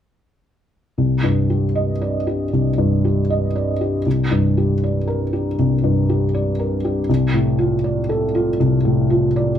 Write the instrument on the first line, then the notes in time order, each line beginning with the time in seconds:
felt piano
0.98 C2
1.23 G2
1.50 G4
1.75 D#5
2.01 D5
2.27 G4
2.53 C2
2.78 G2
3.05 G4
3.30 D#5
3.56 D5
3.81 G4
4.06 C2
4.31 G2
4.57 G4
4.83 D5
5.07 A#4
5.33 G4
5.59 C2
5.84 G2
6.09 G4
6.34 D5
6.59 A#4
6.85 G4
7.09 C2
7.34 A2
7.59 F4
7.84 D5
8.09 A4
8.35 F4
8.60 C2
8.85 A2
9.10 F4
9.36 D5